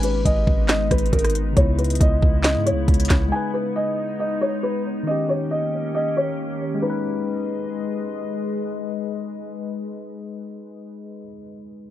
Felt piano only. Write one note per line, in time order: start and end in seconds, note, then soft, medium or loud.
0.04 0.21 B4 medium
0.25 0.66 D#5 medium
0.69 0.87 D#5 medium
0.91 1.09 B4 medium
1.13 1.30 A#4 medium
1.57 1.74 C#5 medium
1.78 1.96 B4 medium
2.01 2.42 D#5 medium
2.44 2.62 D#5 medium
2.66 3.28 C#5 medium
3.32 3.50 G#5 medium
3.54 3.71 B4 medium
3.76 4.17 D#5 medium
4.20 4.37 D#5 medium
4.41 4.59 C#5 medium
4.63 4.81 B4 medium
5.07 5.25 D#5 medium
5.29 5.47 C#5 medium
5.51 5.92 D#5 medium
5.95 6.12 D#5 medium
6.17 6.78 C#5 medium
6.82 8.10 B4 medium